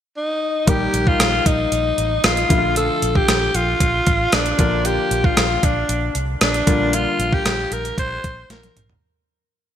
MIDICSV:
0, 0, Header, 1, 5, 480
1, 0, Start_track
1, 0, Tempo, 521739
1, 621, Time_signature, 4, 2, 24, 8
1, 8974, End_track
2, 0, Start_track
2, 0, Title_t, "Alto saxophone"
2, 0, Program_c, 0, 65
2, 153, Note_on_c, 0, 63, 81
2, 633, Note_on_c, 0, 67, 86
2, 647, Note_off_c, 0, 63, 0
2, 993, Note_on_c, 0, 65, 86
2, 1007, Note_off_c, 0, 67, 0
2, 1351, Note_on_c, 0, 63, 88
2, 1365, Note_off_c, 0, 65, 0
2, 2069, Note_on_c, 0, 65, 93
2, 2082, Note_off_c, 0, 63, 0
2, 2543, Note_off_c, 0, 65, 0
2, 2549, Note_on_c, 0, 69, 97
2, 2912, Note_on_c, 0, 67, 92
2, 2926, Note_off_c, 0, 69, 0
2, 3271, Note_on_c, 0, 65, 91
2, 3285, Note_off_c, 0, 67, 0
2, 3991, Note_on_c, 0, 62, 83
2, 4005, Note_off_c, 0, 65, 0
2, 4470, Note_on_c, 0, 67, 87
2, 4484, Note_off_c, 0, 62, 0
2, 4832, Note_on_c, 0, 65, 86
2, 4846, Note_off_c, 0, 67, 0
2, 5192, Note_on_c, 0, 62, 72
2, 5206, Note_off_c, 0, 65, 0
2, 5658, Note_off_c, 0, 62, 0
2, 5914, Note_on_c, 0, 62, 77
2, 6392, Note_on_c, 0, 65, 86
2, 6405, Note_off_c, 0, 62, 0
2, 6752, Note_on_c, 0, 67, 90
2, 6766, Note_off_c, 0, 65, 0
2, 7110, Note_on_c, 0, 70, 83
2, 7124, Note_off_c, 0, 67, 0
2, 7346, Note_off_c, 0, 70, 0
2, 7350, Note_on_c, 0, 72, 97
2, 7792, Note_off_c, 0, 72, 0
2, 7831, Note_on_c, 0, 70, 84
2, 8161, Note_off_c, 0, 70, 0
2, 8974, End_track
3, 0, Start_track
3, 0, Title_t, "Grand piano"
3, 0, Program_c, 1, 0
3, 612, Note_on_c, 1, 51, 56
3, 618, Note_on_c, 1, 55, 54
3, 627, Note_on_c, 1, 58, 52
3, 634, Note_on_c, 1, 67, 61
3, 782, Control_c, 1, 64, 127
3, 2263, Note_off_c, 1, 51, 0
3, 2266, Note_off_c, 1, 55, 0
3, 2270, Note_off_c, 1, 58, 0
3, 2274, Note_off_c, 1, 67, 0
3, 2290, Note_on_c, 1, 50, 54
3, 2298, Note_on_c, 1, 53, 50
3, 2306, Note_on_c, 1, 57, 51
3, 2313, Note_on_c, 1, 64, 50
3, 2315, Control_c, 1, 64, 0
3, 2365, Note_off_c, 1, 64, 0
3, 2370, Note_on_c, 1, 65, 61
3, 2500, Control_c, 1, 64, 127
3, 4179, Note_off_c, 1, 50, 0
3, 4183, Note_off_c, 1, 53, 0
3, 4187, Note_off_c, 1, 57, 0
3, 4210, Note_on_c, 1, 50, 54
3, 4217, Note_on_c, 1, 53, 48
3, 4218, Note_off_c, 1, 65, 0
3, 4225, Note_on_c, 1, 58, 54
3, 4232, Note_on_c, 1, 65, 61
3, 4234, Control_c, 1, 64, 0
3, 4397, Control_c, 1, 64, 127
3, 6099, Note_off_c, 1, 50, 0
3, 6103, Note_off_c, 1, 53, 0
3, 6106, Note_off_c, 1, 58, 0
3, 6110, Note_off_c, 1, 65, 0
3, 6131, Note_on_c, 1, 50, 58
3, 6139, Note_on_c, 1, 55, 51
3, 6146, Note_on_c, 1, 58, 52
3, 6154, Note_on_c, 1, 65, 62
3, 6155, Control_c, 1, 64, 0
3, 6319, Control_c, 1, 64, 127
3, 8020, Note_off_c, 1, 50, 0
3, 8023, Note_off_c, 1, 55, 0
3, 8027, Note_off_c, 1, 58, 0
3, 8031, Note_off_c, 1, 65, 0
3, 8312, Control_c, 1, 64, 0
3, 8974, End_track
4, 0, Start_track
4, 0, Title_t, "Fingered electric bass"
4, 0, Program_c, 2, 33
4, 620, Note_on_c, 2, 34, 87
4, 794, Note_off_c, 2, 34, 0
4, 861, Note_on_c, 2, 34, 86
4, 1034, Note_off_c, 2, 34, 0
4, 1102, Note_on_c, 2, 34, 81
4, 1275, Note_off_c, 2, 34, 0
4, 1343, Note_on_c, 2, 34, 86
4, 1515, Note_off_c, 2, 34, 0
4, 1581, Note_on_c, 2, 34, 92
4, 1754, Note_off_c, 2, 34, 0
4, 1822, Note_on_c, 2, 33, 81
4, 1995, Note_off_c, 2, 33, 0
4, 2063, Note_on_c, 2, 34, 88
4, 2236, Note_off_c, 2, 34, 0
4, 2302, Note_on_c, 2, 34, 95
4, 2647, Note_off_c, 2, 34, 0
4, 2783, Note_on_c, 2, 34, 87
4, 2955, Note_off_c, 2, 34, 0
4, 3020, Note_on_c, 2, 34, 86
4, 3193, Note_off_c, 2, 34, 0
4, 3263, Note_on_c, 2, 34, 101
4, 3435, Note_off_c, 2, 34, 0
4, 3500, Note_on_c, 2, 34, 94
4, 3673, Note_off_c, 2, 34, 0
4, 3743, Note_on_c, 2, 33, 81
4, 3915, Note_off_c, 2, 33, 0
4, 3982, Note_on_c, 2, 34, 95
4, 4155, Note_off_c, 2, 34, 0
4, 4221, Note_on_c, 2, 34, 91
4, 4567, Note_off_c, 2, 34, 0
4, 4701, Note_on_c, 2, 34, 88
4, 4874, Note_off_c, 2, 34, 0
4, 4940, Note_on_c, 2, 34, 95
4, 5113, Note_off_c, 2, 34, 0
4, 5181, Note_on_c, 2, 34, 87
4, 5354, Note_off_c, 2, 34, 0
4, 5420, Note_on_c, 2, 34, 90
4, 5593, Note_off_c, 2, 34, 0
4, 5660, Note_on_c, 2, 36, 81
4, 5833, Note_off_c, 2, 36, 0
4, 5900, Note_on_c, 2, 34, 86
4, 6073, Note_off_c, 2, 34, 0
4, 6139, Note_on_c, 2, 34, 81
4, 6485, Note_off_c, 2, 34, 0
4, 6617, Note_on_c, 2, 34, 84
4, 6791, Note_off_c, 2, 34, 0
4, 6859, Note_on_c, 2, 34, 84
4, 7033, Note_off_c, 2, 34, 0
4, 7097, Note_on_c, 2, 34, 90
4, 7271, Note_off_c, 2, 34, 0
4, 7338, Note_on_c, 2, 34, 91
4, 7512, Note_off_c, 2, 34, 0
4, 7582, Note_on_c, 2, 34, 80
4, 7755, Note_off_c, 2, 34, 0
4, 7819, Note_on_c, 2, 34, 92
4, 7993, Note_off_c, 2, 34, 0
4, 8059, Note_on_c, 2, 34, 85
4, 8232, Note_off_c, 2, 34, 0
4, 8974, End_track
5, 0, Start_track
5, 0, Title_t, "Drums"
5, 621, Note_on_c, 9, 42, 87
5, 622, Note_on_c, 9, 36, 100
5, 713, Note_off_c, 9, 42, 0
5, 714, Note_off_c, 9, 36, 0
5, 863, Note_on_c, 9, 42, 64
5, 955, Note_off_c, 9, 42, 0
5, 982, Note_on_c, 9, 36, 78
5, 1074, Note_off_c, 9, 36, 0
5, 1103, Note_on_c, 9, 42, 80
5, 1104, Note_on_c, 9, 37, 90
5, 1195, Note_off_c, 9, 42, 0
5, 1196, Note_off_c, 9, 37, 0
5, 1343, Note_on_c, 9, 36, 84
5, 1343, Note_on_c, 9, 42, 71
5, 1435, Note_off_c, 9, 36, 0
5, 1435, Note_off_c, 9, 42, 0
5, 1582, Note_on_c, 9, 42, 64
5, 1674, Note_off_c, 9, 42, 0
5, 1822, Note_on_c, 9, 42, 56
5, 1914, Note_off_c, 9, 42, 0
5, 2059, Note_on_c, 9, 42, 71
5, 2062, Note_on_c, 9, 37, 105
5, 2151, Note_off_c, 9, 42, 0
5, 2154, Note_off_c, 9, 37, 0
5, 2182, Note_on_c, 9, 42, 44
5, 2274, Note_off_c, 9, 42, 0
5, 2302, Note_on_c, 9, 36, 98
5, 2302, Note_on_c, 9, 42, 73
5, 2394, Note_off_c, 9, 36, 0
5, 2394, Note_off_c, 9, 42, 0
5, 2541, Note_on_c, 9, 42, 85
5, 2633, Note_off_c, 9, 42, 0
5, 2782, Note_on_c, 9, 42, 67
5, 2874, Note_off_c, 9, 42, 0
5, 2902, Note_on_c, 9, 36, 77
5, 2994, Note_off_c, 9, 36, 0
5, 3021, Note_on_c, 9, 42, 81
5, 3023, Note_on_c, 9, 37, 91
5, 3113, Note_off_c, 9, 42, 0
5, 3115, Note_off_c, 9, 37, 0
5, 3262, Note_on_c, 9, 42, 66
5, 3354, Note_off_c, 9, 42, 0
5, 3499, Note_on_c, 9, 36, 80
5, 3501, Note_on_c, 9, 42, 68
5, 3591, Note_off_c, 9, 36, 0
5, 3593, Note_off_c, 9, 42, 0
5, 3740, Note_on_c, 9, 42, 58
5, 3743, Note_on_c, 9, 36, 76
5, 3832, Note_off_c, 9, 42, 0
5, 3835, Note_off_c, 9, 36, 0
5, 3978, Note_on_c, 9, 42, 80
5, 3982, Note_on_c, 9, 37, 104
5, 4070, Note_off_c, 9, 42, 0
5, 4074, Note_off_c, 9, 37, 0
5, 4101, Note_on_c, 9, 42, 47
5, 4193, Note_off_c, 9, 42, 0
5, 4220, Note_on_c, 9, 42, 73
5, 4221, Note_on_c, 9, 36, 100
5, 4312, Note_off_c, 9, 42, 0
5, 4313, Note_off_c, 9, 36, 0
5, 4461, Note_on_c, 9, 42, 86
5, 4553, Note_off_c, 9, 42, 0
5, 4704, Note_on_c, 9, 42, 66
5, 4796, Note_off_c, 9, 42, 0
5, 4822, Note_on_c, 9, 36, 77
5, 4914, Note_off_c, 9, 36, 0
5, 4940, Note_on_c, 9, 42, 83
5, 4942, Note_on_c, 9, 37, 91
5, 5032, Note_off_c, 9, 42, 0
5, 5034, Note_off_c, 9, 37, 0
5, 5180, Note_on_c, 9, 42, 66
5, 5181, Note_on_c, 9, 36, 83
5, 5272, Note_off_c, 9, 42, 0
5, 5273, Note_off_c, 9, 36, 0
5, 5420, Note_on_c, 9, 42, 68
5, 5512, Note_off_c, 9, 42, 0
5, 5658, Note_on_c, 9, 42, 57
5, 5750, Note_off_c, 9, 42, 0
5, 5897, Note_on_c, 9, 42, 77
5, 5901, Note_on_c, 9, 37, 99
5, 5989, Note_off_c, 9, 42, 0
5, 5993, Note_off_c, 9, 37, 0
5, 6020, Note_on_c, 9, 42, 44
5, 6112, Note_off_c, 9, 42, 0
5, 6138, Note_on_c, 9, 42, 74
5, 6139, Note_on_c, 9, 36, 100
5, 6230, Note_off_c, 9, 42, 0
5, 6231, Note_off_c, 9, 36, 0
5, 6377, Note_on_c, 9, 42, 85
5, 6469, Note_off_c, 9, 42, 0
5, 6620, Note_on_c, 9, 42, 65
5, 6712, Note_off_c, 9, 42, 0
5, 6739, Note_on_c, 9, 36, 79
5, 6831, Note_off_c, 9, 36, 0
5, 6859, Note_on_c, 9, 42, 84
5, 6860, Note_on_c, 9, 37, 91
5, 6951, Note_off_c, 9, 42, 0
5, 6952, Note_off_c, 9, 37, 0
5, 7100, Note_on_c, 9, 42, 71
5, 7192, Note_off_c, 9, 42, 0
5, 7222, Note_on_c, 9, 42, 50
5, 7314, Note_off_c, 9, 42, 0
5, 7339, Note_on_c, 9, 36, 82
5, 7343, Note_on_c, 9, 42, 67
5, 7431, Note_off_c, 9, 36, 0
5, 7435, Note_off_c, 9, 42, 0
5, 7581, Note_on_c, 9, 42, 58
5, 7583, Note_on_c, 9, 36, 73
5, 7673, Note_off_c, 9, 42, 0
5, 7675, Note_off_c, 9, 36, 0
5, 7821, Note_on_c, 9, 42, 77
5, 7822, Note_on_c, 9, 38, 51
5, 7913, Note_off_c, 9, 42, 0
5, 7914, Note_off_c, 9, 38, 0
5, 7943, Note_on_c, 9, 42, 44
5, 7943, Note_on_c, 9, 48, 52
5, 8035, Note_off_c, 9, 42, 0
5, 8035, Note_off_c, 9, 48, 0
5, 8065, Note_on_c, 9, 42, 75
5, 8065, Note_on_c, 9, 45, 83
5, 8157, Note_off_c, 9, 42, 0
5, 8157, Note_off_c, 9, 45, 0
5, 8183, Note_on_c, 9, 43, 77
5, 8275, Note_off_c, 9, 43, 0
5, 8974, End_track
0, 0, End_of_file